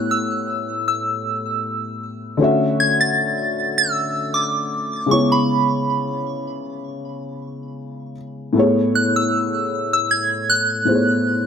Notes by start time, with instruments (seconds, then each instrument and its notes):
Already playing: felt piano A2 A3 B3 G4 C#5, synth bell F#6
0.11 synth bell E6
0.88 synth bell E6
2.37 felt piano D3 A3 C#4
2.42 felt piano F#4 E5
2.80 synth bell G#6
3.01 synth bell A6
3.78 synth bell E6
4.34 synth bell D6
5.06 felt piano C#3 G#3 B3
5.11 felt piano E4 C#5, synth bell C#6
5.32 synth bell B5
8.53 felt piano A2 A3 B3
8.57 felt piano G#4 C#5
8.95 synth bell F#6
9.16 synth bell E6
9.93 synth bell E6
10.11 synth bell G#6
10.50 synth bell F#6
10.85 felt piano A2 A3 B3 G#4 C5
10.95 felt piano C#5